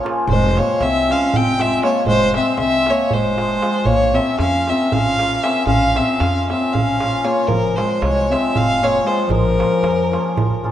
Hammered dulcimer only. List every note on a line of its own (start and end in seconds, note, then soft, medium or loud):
0.03 0.32 F3 medium
0.03 0.20 A#3 medium
0.03 0.21 C#4 medium
0.03 0.21 F4 medium
0.57 1.07 F3 medium
0.57 1.07 G#3 medium
0.57 0.74 C4 medium
0.57 0.74 F4 medium
1.08 1.58 F3 medium
1.08 1.59 G#3 medium
1.08 1.26 C4 medium
1.08 1.27 F4 medium
1.60 1.80 F3 medium
1.60 1.81 G#3 medium
1.60 1.77 C4 medium
1.60 1.77 F4 medium
1.82 2.31 F3 medium
1.82 2.32 G#3 medium
1.82 2.00 C4 medium
1.82 2.00 F4 medium
2.33 2.85 F3 medium
2.33 2.85 G#3 medium
2.33 2.52 C4 medium
2.33 2.52 F4 medium
2.86 3.35 F3 medium
2.86 3.36 G#3 medium
2.86 3.05 C4 medium
2.86 3.06 F4 medium
3.36 3.61 F3 medium
3.36 3.61 G#3 medium
3.36 3.56 C4 medium
3.36 3.56 F4 medium
3.62 3.91 F3 medium
3.62 3.91 G#3 medium
3.62 3.80 C4 medium
3.62 3.80 F4 medium
4.14 4.66 F3 medium
4.14 4.32 A#3 soft
4.14 4.33 C#4 medium
4.14 4.33 F4 medium
4.67 5.18 F3 medium
4.67 4.86 A#3 medium
4.67 4.86 C#4 soft
4.67 4.86 F4 medium
5.19 5.41 F3 soft
5.19 5.37 A#3 medium
5.19 5.37 C#4 medium
5.19 5.37 F4 medium
5.42 5.94 F3 medium
5.42 5.61 A#3 medium
5.42 5.60 C#4 medium
5.42 5.61 F4 medium
5.95 6.48 F3 medium
5.95 6.13 A#3 soft
5.95 6.14 C#4 soft
5.95 6.14 F4 medium
6.49 7.00 F3 medium
6.49 6.67 A#3 medium
6.49 6.68 C#4 medium
6.49 6.68 F4 medium
7.01 7.24 F3 medium
7.01 7.18 A#3 soft
7.01 7.19 C#4 medium
7.01 7.19 F4 medium
7.25 7.53 F3 medium
7.25 7.42 A#3 medium
7.25 7.42 C#4 medium
7.25 7.43 F4 medium
7.78 8.31 F3 medium
7.78 8.31 G#3 medium
7.78 7.95 C4 medium
7.78 7.96 F4 medium
8.32 8.81 F3 medium
8.32 8.81 G#3 medium
8.32 8.49 C4 medium
8.32 8.49 F4 medium
8.83 9.05 F3 medium
8.83 9.05 G#3 medium
8.83 9.00 C4 medium
8.83 9.00 F4 medium
9.06 9.34 F3 medium
9.06 9.34 G#3 medium
9.06 9.24 C4 medium
9.06 9.24 F4 medium
9.58 10.10 F3 medium
9.58 9.76 A#3 medium
9.58 9.77 C#4 medium
9.58 9.77 F4 medium
10.12 10.63 F3 medium
10.12 10.30 A#3 medium
10.12 10.30 C#4 medium
10.12 10.30 F4 medium
10.64 10.72 F3 medium
10.64 10.72 A#3 medium
10.64 10.72 C#4 medium
10.64 10.72 F4 medium